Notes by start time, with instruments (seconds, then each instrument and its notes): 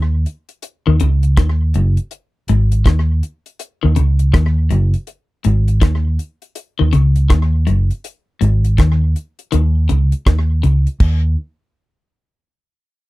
Already playing: fingered electric bass D#2, clean electric guitar D#3
0.26 closed hi-hat
0.49 closed hi-hat
0.62 closed hi-hat
0.87 fingered electric bass D#2, clean electric guitar D#3
1.00 fingered electric bass C#2, clean electric guitar C#3, closed hi-hat
1.23 closed hi-hat
1.37 fingered electric bass D#2, clean electric guitar D#3, kick, cross-stick, closed hi-hat
1.74 fingered electric bass F#1, clean electric guitar F#2, closed hi-hat
1.97 closed hi-hat
2.11 closed hi-hat
2.48 fingered electric bass G#1, clean electric guitar G#2, closed hi-hat
2.72 closed hi-hat
2.85 fingered electric bass D#2, clean electric guitar D#3, kick, cross-stick, closed hi-hat
3.23 closed hi-hat
3.46 closed hi-hat
3.59 closed hi-hat
3.83 fingered electric bass D#2, clean electric guitar D#3
3.96 fingered electric bass C#2, clean electric guitar C#3, closed hi-hat
4.19 closed hi-hat
4.34 fingered electric bass D#2, clean electric guitar D#3, kick, cross-stick, closed hi-hat
4.70 fingered electric bass F#1, clean electric guitar F#2, closed hi-hat
4.94 closed hi-hat
5.07 closed hi-hat
5.44 fingered electric bass G#1, clean electric guitar G#2, closed hi-hat
5.68 closed hi-hat
5.81 fingered electric bass D#2, clean electric guitar D#3, kick, cross-stick, closed hi-hat
6.19 closed hi-hat
6.42 closed hi-hat
6.55 closed hi-hat
6.79 fingered electric bass D#2, clean electric guitar D#3
6.93 fingered electric bass C#2, clean electric guitar C#3, closed hi-hat
7.16 closed hi-hat
7.30 fingered electric bass D#2, clean electric guitar D#3, kick, cross-stick, closed hi-hat
7.67 fingered electric bass F#1, clean electric guitar F#2, closed hi-hat
7.91 closed hi-hat
8.04 closed hi-hat
8.41 fingered electric bass G#1, clean electric guitar G#2, closed hi-hat
8.64 closed hi-hat
8.78 fingered electric bass D#2, clean electric guitar D#3, kick, cross-stick, closed hi-hat
9.16 closed hi-hat
9.39 closed hi-hat
9.52 fingered electric bass D#2, clean electric guitar D#3, closed hi-hat
9.89 fingered electric bass C#2, clean electric guitar C#3, closed hi-hat
10.12 closed hi-hat
10.26 fingered electric bass D#2, clean electric guitar D#3, kick, cross-stick, closed hi-hat
10.63 fingered electric bass C#2, clean electric guitar C#3, closed hi-hat
10.87 closed hi-hat
11.00 fingered electric bass D#2, kick, crash